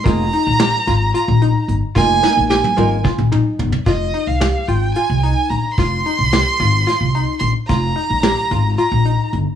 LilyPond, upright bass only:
\new Staff \with { instrumentName = "Upright bass" } { \clef bass \time 7/8 \key f \minor \tempo 4 = 110 f,,8 r16 bes,,8 r16 aes,,8 r16 bes,,8 r16 g,,16 r16 | f,,8 r16 bes,,8 r16 aes,,8 r16 bes,,8 r16 g,,16 r16 | f,,8 r16 c,8 r16 aes,,8 r16 c,8 r16 bes,,16 r16 | f,,8 r16 c,8 r16 aes,,8 r16 c,8 r16 bes,,16 r16 |
f,,8 r16 bes,,8 r16 aes,,8 r16 bes,,8 r16 g,,16 r16 | }